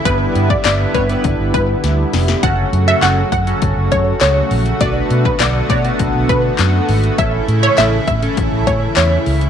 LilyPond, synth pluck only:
\new Staff \with { instrumentName = "Synth pluck" } { \time 4/4 \key e \dorian \tempo 4 = 101 b'8 r16 d''16 d''8 b'16 r8. b'8 r4 | fis''8 r16 e''16 fis''8 fis''16 r8. cis''8 cis''8. r16 | d''8 r16 b'16 d''8 d''16 r8. b'8 r4 | e''8 r16 cis''16 e''8 e''16 r8. cis''8 cis''8. r16 | }